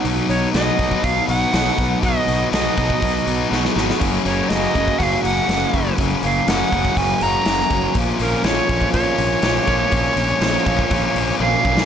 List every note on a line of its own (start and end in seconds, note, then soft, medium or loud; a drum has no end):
0.04 0.20 B1 medium
0.04 0.53 B2 medium
0.04 0.30 F#3 medium
0.04 0.30 B3 medium
0.04 0.29 D#4 loud
0.04 0.56 F#4 medium
0.04 open hi-hat medium
0.29 0.45 B1 medium
0.29 0.53 F#3 medium
0.29 0.54 B3 medium
0.29 0.55 D#4 medium
0.29 0.52 C#5 medium
0.29 open hi-hat soft
0.53 0.70 B1 medium
0.53 0.80 B2 medium
0.53 0.79 F#3 medium
0.53 0.79 B3 medium
0.53 0.78 D#4 medium
0.53 0.79 F#4 medium
0.53 1.05 D#5 medium
0.53 snare loud
0.53 open hi-hat medium
0.78 0.94 B1 medium
0.78 1.02 B2 medium
0.78 1.03 F#3 medium
0.78 1.03 B3 medium
0.78 1.03 D#4 medium
0.78 1.06 F#4 medium
0.78 kick medium
0.78 open hi-hat soft
0.91 kick medium
1.03 1.19 B1 medium
1.03 1.52 B2 medium
1.03 1.29 F#3 medium
1.03 1.27 B3 medium
1.03 1.26 D#4 medium
1.03 1.55 F#4 medium
1.03 1.28 F5 loud
1.03 kick medium
1.03 open hi-hat medium
1.27 1.44 B1 medium
1.27 1.53 F#3 medium
1.27 1.53 B3 medium
1.27 1.54 D#4 medium
1.27 1.99 F#5 loud
1.27 open hi-hat soft
1.53 1.69 B1 medium
1.53 2.01 B2 medium
1.53 1.79 F#3 medium
1.53 1.77 B3 medium
1.53 1.76 D#4 loud
1.53 1.76 F#4 medium
1.53 snare loud
1.53 open hi-hat medium
1.77 1.93 B1 medium
1.77 2.02 F#3 medium
1.77 2.02 B3 medium
1.77 2.02 D#4 medium
1.77 2.04 F#4 medium
1.77 kick medium
1.77 open hi-hat medium
2.02 2.18 B1 medium
2.02 2.51 B2 medium
2.02 2.29 F#3 medium
2.02 2.27 B3 loud
2.02 2.26 D#4 medium
2.02 2.54 F#4 loud
2.02 2.49 D#5 medium
2.02 kick loud
2.02 open hi-hat medium
2.27 2.43 B1 medium
2.27 2.52 F#3 medium
2.27 2.52 B3 medium
2.27 2.53 D#4 medium
2.27 open hi-hat medium
2.52 2.68 B1 medium
2.52 2.77 B2 medium
2.52 2.77 F#3 medium
2.52 2.76 B3 medium
2.52 2.75 D#4 medium
2.52 2.77 F#4 medium
2.52 3.47 D#5 medium
2.52 snare loud
2.52 open hi-hat medium
2.76 2.93 B1 medium
2.76 3.00 B2 medium
2.76 3.02 F#3 medium
2.76 3.01 B3 medium
2.76 3.02 D#4 medium
2.76 3.04 F#4 medium
2.76 kick medium
2.76 open hi-hat medium
2.90 kick medium
3.01 3.17 B1 medium
3.01 3.49 B2 medium
3.01 3.27 F#3 medium
3.01 3.26 B3 medium
3.01 3.25 D#4 medium
3.01 3.53 F#4 medium
3.01 kick medium
3.01 open hi-hat medium
3.26 3.42 B1 medium
3.26 3.51 F#3 medium
3.26 3.50 B3 medium
3.26 3.51 D#4 medium
3.26 open hi-hat soft
3.50 3.67 B1 medium
3.50 3.99 B2 medium
3.50 3.76 F#3 medium
3.50 3.75 B3 loud
3.50 3.74 D#4 medium
3.50 3.75 F#4 medium
3.50 snare medium
3.65 snare medium
3.75 3.91 G#1 medium
3.75 4.00 F#3 medium
3.75 3.99 B3 medium
3.75 3.99 D#4 medium
3.75 4.02 F#4 medium
3.75 snare medium
3.90 snare medium
3.99 4.16 F#1 medium
3.99 4.76 F#2 medium
3.99 4.49 C#3 medium
3.99 4.26 F#3 medium
3.99 4.26 A#3 medium
3.99 4.24 C#4 loud
3.99 4.52 F#4 medium
3.99 kick loud
3.99 open hi-hat medium
3.99 crash medium
4.25 4.41 F#1 medium
4.25 4.50 F#3 medium
4.25 4.51 A#3 medium
4.25 4.51 C#4 medium
4.25 4.50 C#5 medium
4.25 open hi-hat soft
4.49 4.66 F#1 medium
4.49 5.96 F#2 medium
4.49 4.75 C#3 medium
4.49 4.76 F#3 medium
4.49 4.75 A#3 medium
4.49 4.75 C#4 medium
4.49 5.00 D#5 medium
4.49 snare loud
4.49 open hi-hat medium
4.53 4.74 F#4 medium
4.74 4.90 F#1 medium
4.74 5.25 F#2 medium
4.74 4.98 C#3 medium
4.74 4.99 F#3 medium
4.74 5.00 A#3 medium
4.74 5.01 C#4 medium
4.74 5.01 F#4 medium
4.74 kick medium
4.74 open hi-hat soft
4.88 kick medium
4.98 5.15 F#1 medium
4.98 5.48 C#3 medium
4.98 5.24 F#3 medium
4.98 5.25 A#3 medium
4.98 5.23 C#4 medium
4.98 5.50 F#4 medium
4.98 5.04 F#5 medium
4.98 kick loud
4.98 open hi-hat medium
5.03 5.23 F5 loud
5.23 5.39 F#1 medium
5.23 5.49 F#3 medium
5.23 5.49 A#3 medium
5.23 5.50 C#4 medium
5.23 5.94 F#5 loud
5.23 open hi-hat soft
5.48 5.64 F#1 medium
5.48 5.97 F#2 medium
5.48 5.98 C#3 medium
5.48 5.73 F#3 loud
5.48 5.74 A#3 medium
5.48 5.73 C#4 loud
5.48 5.71 F#4 medium
5.48 snare loud
5.48 open hi-hat medium
5.62 snare soft
5.72 5.89 F#1 medium
5.72 5.98 F#3 medium
5.72 5.99 A#3 medium
5.72 6.00 C#4 medium
5.72 5.99 F#4 medium
5.72 kick medium
5.72 open hi-hat medium
5.98 6.13 F#1 medium
5.98 6.48 F#2 medium
5.98 6.46 C#3 medium
5.98 6.23 F#3 loud
5.98 6.23 A#3 medium
5.98 6.22 C#4 loud
5.98 6.48 F#4 loud
5.98 kick loud
5.98 open hi-hat medium
6.23 6.38 F#1 medium
6.23 6.47 F#3 medium
6.23 6.48 A#3 medium
6.23 6.49 C#4 medium
6.23 6.50 F5 medium
6.23 open hi-hat medium
6.46 6.63 F#1 medium
6.46 6.96 F#2 medium
6.46 6.72 C#3 medium
6.46 6.72 F#3 medium
6.46 6.72 A#3 medium
6.46 6.72 C#4 medium
6.46 6.69 F#4 loud
6.46 6.99 F#5 medium
6.46 snare loud
6.46 open hi-hat medium
6.70 6.88 F#1 medium
6.70 7.23 F#2 medium
6.70 6.95 C#3 medium
6.70 6.96 F#3 medium
6.70 6.97 A#3 medium
6.70 6.98 C#4 medium
6.70 6.98 F#4 medium
6.70 kick medium
6.70 open hi-hat medium
6.85 kick medium
6.96 7.12 F#1 medium
6.96 7.46 C#3 medium
6.96 7.22 F#3 medium
6.96 7.22 A#3 medium
6.96 7.21 C#4 medium
6.96 7.47 F#4 medium
6.96 7.24 G#5 loud
6.96 kick medium
6.96 open hi-hat medium
7.21 7.37 F#1 medium
7.21 7.46 F#3 medium
7.21 7.47 A#3 medium
7.21 7.48 C#4 medium
7.21 7.96 A#5 loud
7.21 open hi-hat soft
7.46 7.61 F#1 medium
7.46 7.94 F#2 loud
7.46 7.95 C#3 loud
7.46 7.72 F#3 medium
7.46 7.72 A#3 loud
7.46 7.70 C#4 loud
7.46 7.69 F#4 medium
7.46 snare loud
7.46 open hi-hat medium
7.59 snare soft
7.70 7.86 F#1 medium
7.70 7.95 F#3 medium
7.70 7.96 A#3 medium
7.70 7.96 C#4 medium
7.70 7.94 F#4 medium
7.70 kick medium
7.70 open hi-hat soft
7.95 8.10 A#1 medium
7.95 8.44 A#2 medium
7.95 8.22 F3 medium
7.95 8.20 A#3 loud
7.95 8.19 C#4 loud
7.95 kick loud
7.95 open hi-hat medium
7.99 8.47 F4 loud
8.20 8.35 A#1 medium
8.20 8.45 F3 medium
8.20 8.45 A#3 medium
8.20 8.46 C#4 medium
8.20 8.46 A#4 medium
8.20 open hi-hat medium
8.44 8.59 A#1 medium
8.44 8.70 A#2 medium
8.44 8.70 F3 medium
8.44 8.69 A#3 medium
8.44 8.68 C#4 medium
8.44 8.68 F4 loud
8.44 8.92 C#5 loud
8.44 snare loud
8.44 open hi-hat medium
8.69 8.84 A#1 medium
8.69 8.92 A#2 medium
8.69 8.94 F3 medium
8.69 8.94 A#3 medium
8.69 8.95 C#4 medium
8.69 8.96 F4 medium
8.69 kick medium
8.69 open hi-hat medium
8.82 kick medium
8.93 9.09 A#1 medium
8.93 9.41 A#2 medium
8.93 9.20 F3 medium
8.93 9.18 A#3 medium
8.93 9.18 C#4 medium
8.93 9.45 F4 medium
8.93 11.35 C#5 loud
8.93 kick medium
8.93 open hi-hat medium
9.18 9.34 A#1 medium
9.18 9.43 F3 medium
9.18 9.43 A#3 medium
9.18 9.44 C#4 medium
9.18 open hi-hat soft
9.42 9.58 A#1 medium
9.42 9.90 A#2 medium
9.42 9.69 F3 loud
9.42 9.67 A#3 loud
9.42 9.67 C#4 loud
9.42 9.66 F4 medium
9.42 snare loud
9.42 open hi-hat medium
9.67 9.83 A#1 medium
9.67 9.91 F3 medium
9.67 9.91 A#3 medium
9.67 9.92 C#4 medium
9.67 9.94 F4 medium
9.67 kick medium
9.67 open hi-hat soft
9.91 10.08 A#1 medium
9.91 10.40 A#2 medium
9.91 10.17 F3 medium
9.91 10.16 A#3 loud
9.91 10.15 C#4 loud
9.91 10.42 F4 loud
9.91 kick loud
9.91 open hi-hat medium
10.17 10.32 A#1 medium
10.17 10.40 F3 medium
10.17 10.41 A#3 medium
10.17 10.42 C#4 medium
10.17 open hi-hat soft
10.41 10.56 A#1 medium
10.41 10.66 A#2 medium
10.41 10.65 F3 medium
10.41 10.65 A#3 medium
10.41 10.64 C#4 medium
10.41 10.63 F4 loud
10.41 snare loud
10.41 open hi-hat medium
10.65 10.82 A#1 loud
10.65 10.88 A#2 medium
10.65 10.89 F3 medium
10.65 10.89 A#3 medium
10.65 10.90 C#4 medium
10.65 10.92 F4 medium
10.65 kick medium
10.65 open hi-hat medium
10.79 kick medium
10.90 11.06 A#1 medium
10.90 11.38 A#2 medium
10.90 11.15 F3 medium
10.90 11.14 A#3 medium
10.90 11.13 C#4 medium
10.90 11.42 F4 medium
10.90 kick loud
10.90 open hi-hat medium
11.15 11.30 A#1 medium
11.15 11.39 F3 medium
11.15 11.40 A#3 medium
11.15 11.40 C#4 medium
11.15 open hi-hat medium
11.39 11.55 A#1 medium
11.39 11.85 A#2 medium
11.39 11.65 F3 medium
11.39 11.64 A#3 loud
11.39 11.63 C#4 loud
11.39 11.62 F4 medium
11.39 11.85 F5 loud
11.39 high tom medium
11.64 11.80 B1 medium
11.64 11.85 F3 medium
11.64 11.85 A#3 medium
11.64 11.85 C#4 medium
11.64 11.85 F4 medium
11.64 kick medium
11.77 snare medium